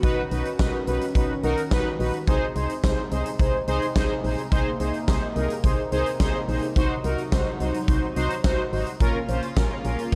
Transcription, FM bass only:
0.03 0.15 B1 loud
0.31 0.43 B1 loud
0.59 0.71 B1 loud
0.87 0.99 B1 medium
1.15 1.27 B1 loud
1.43 1.55 B1 loud
1.71 1.83 B1 loud
1.99 2.11 A#1 loud
2.28 2.39 C2 loud
2.56 2.67 C2 loud
2.84 2.95 C2 loud
3.12 3.23 C2 loud
3.39 3.51 C2 loud
3.68 3.79 C2 loud
3.96 4.08 C2 loud
4.24 4.36 A#1 loud
4.52 4.64 C2 loud
4.80 4.92 C2 medium
5.08 5.20 C2 loud
5.36 5.48 C2 loud
5.64 5.76 C2 loud
5.92 6.04 C2 medium
6.20 6.32 C2 loud
6.48 6.60 A#1 loud
6.76 6.88 C2 loud
7.04 7.16 C2 loud
7.32 7.44 C2 loud
7.60 7.72 C2 medium
7.88 8.00 C2 loud
8.16 8.28 C2 loud
8.44 8.56 C2 loud
8.72 8.84 G#1 loud
9.00 9.12 A#1 loud
9.28 9.40 A#1 loud
9.57 9.68 A#1 loud
9.85 9.96 A#1 loud

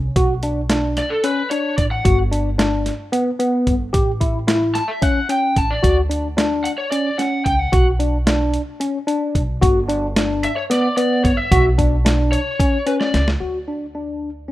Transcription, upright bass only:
0.16 0.99 B1 medium
1.78 1.99 A1 medium
2.06 2.88 G1 medium
3.67 3.88 G1 medium
3.94 4.77 A1 medium
5.57 5.77 A1 medium
5.83 6.66 D2 medium
7.46 7.67 C#2 medium
7.73 8.56 B1 medium
9.35 9.56 B1 medium
9.62 10.45 G1 loud
11.25 11.45 G1 medium
11.52 12.34 B1 loud
13.14 13.34 C#2 medium
13.41 14.52 D2 medium

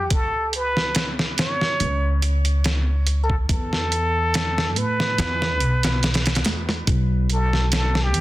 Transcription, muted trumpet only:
0.00 0.14 G4 medium
0.13 0.54 A4 loud
0.56 1.10 B4 medium
1.40 2.20 C#5 medium
3.24 3.36 A4 medium
3.51 4.80 A4 loud
4.78 6.46 B4 loud
7.33 7.71 A4 medium
7.76 8.05 A4 loud
8.03 8.21 G4 medium

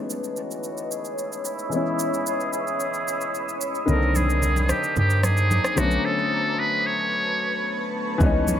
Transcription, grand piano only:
0.00 1.67 E3 medium
0.00 1.68 G#3 medium
0.00 1.68 B3 medium
0.00 1.69 C#4 medium
0.00 1.70 D#4 medium
1.69 3.83 E3 medium
1.69 3.84 G#3 medium
1.69 3.85 B3 medium
1.74 3.85 C#4 medium
1.74 3.86 E4 medium
3.86 5.73 D3 medium
3.86 5.72 D#3 medium
3.86 5.74 A#3 medium
3.91 5.75 C4 medium
3.91 5.76 D4 medium
5.75 7.88 D3 medium
5.75 7.89 F#3 medium
5.75 7.90 A3 medium
5.80 7.91 B3 medium
5.80 7.92 C#4 medium
8.18 8.60 E3 medium
8.18 8.60 G#3 medium
8.18 8.60 B3 medium
8.23 8.60 C#4 medium
8.23 8.60 D#4 medium

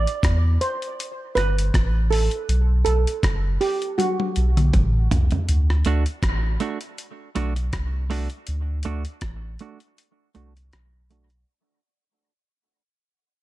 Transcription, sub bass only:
0.23 0.58 E2 medium
1.36 1.71 G1 medium
1.74 2.29 A1 loud
2.49 2.83 B1 loud
2.87 3.06 B1 loud
3.23 3.58 F#1 loud
4.37 4.71 B1 medium
4.74 5.08 A1 medium
5.11 5.31 C2 medium
5.49 5.83 D2 loud
5.86 6.06 D2 loud
6.23 6.57 A1 medium
7.36 7.70 B1 loud
7.73 8.28 C2 medium
8.48 8.83 D2 loud
8.86 9.05 D2 medium
9.22 9.57 A1 loud
10.36 10.70 C2 medium
10.73 11.45 B1 medium

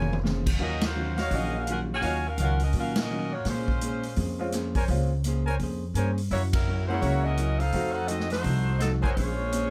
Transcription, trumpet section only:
0.00 0.21 A#4 medium
0.00 0.21 C5 medium
0.00 0.21 C#5 medium
0.00 0.21 G#5 loud
1.17 1.64 F#4 medium
1.17 1.64 C#5 medium
1.17 1.64 D#5 medium
1.17 1.64 F5 medium
2.02 2.17 F#4 medium
2.02 2.17 C#5 medium
2.02 2.17 D#5 medium
2.02 2.17 F5 medium
2.38 2.53 F#4 medium
2.38 2.53 C#5 medium
2.38 2.53 D#5 medium
2.38 2.53 F5 medium
4.75 4.84 A#4 medium
4.75 4.84 C5 medium
4.75 4.84 C#5 medium
4.75 4.84 G#5 medium
5.46 5.55 A#4 medium
5.46 5.55 C5 medium
5.46 5.55 C#5 medium
5.46 5.55 G#5 medium
5.95 6.11 A#4 medium
5.95 6.10 C5 medium
5.95 6.10 C#5 medium
5.95 6.10 G#5 medium
6.89 7.36 A#4 medium
6.89 7.36 C#5 medium
6.89 7.36 E5 medium
6.89 7.36 F#5 medium
9.03 9.12 A#4 medium
9.03 9.12 C5 medium
9.03 9.12 C#5 medium
9.03 9.12 G#5 medium

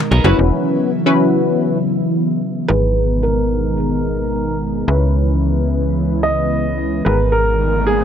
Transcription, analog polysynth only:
0.24 0.90 C#4 loud
0.24 0.90 E4 medium
0.24 0.91 F#4 medium
0.24 0.91 B4 loud
1.06 1.78 C#4 loud
1.06 1.78 E4 medium
1.06 1.78 F#4 medium
1.06 1.78 B4 loud
2.69 4.84 B3 medium
2.69 4.84 G#4 medium
2.69 4.84 A#5 medium
4.88 7.02 C#4 medium
4.88 7.02 E4 medium
4.88 7.02 B4 medium
7.06 8.04 B3 medium
7.06 8.04 G#4 medium
7.06 8.04 A#4 medium

